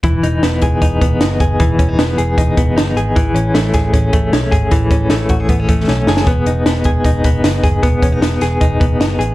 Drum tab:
HH |x-x-x-x-x-x-x-x-|x-x-x-x-x-x-x-x-|x-x-x-x-x-x-x-x-|x-x-x-x-x-x-----|
SD |----o-------o---|----o-------o---|----o-o-----o---|----o-------o-oo|
BD |o-----o-o-o---o-|o-o-----o-o-----|o-----o-o-o---o-|o-o---o-o-o-----|

HH |x-x-x-x-x-x-x-x-|x-x-x-x-x-x-x-x-|
SD |----o-------o---|----o-o-----o---|
BD |o-----o-o-o---o-|o-o-----o-o-----|